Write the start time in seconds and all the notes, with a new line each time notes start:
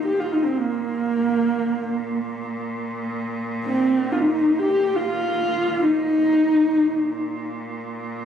Already playing: A#2
0.06 G4
0.20 F4
0.32 D#4
0.43 C4
0.57 A#3
1.16 A#2
3.65 C4
4.12 F4
4.20 D#4
4.59 G4
4.96 F4
5.84 D#4
6.20 A#2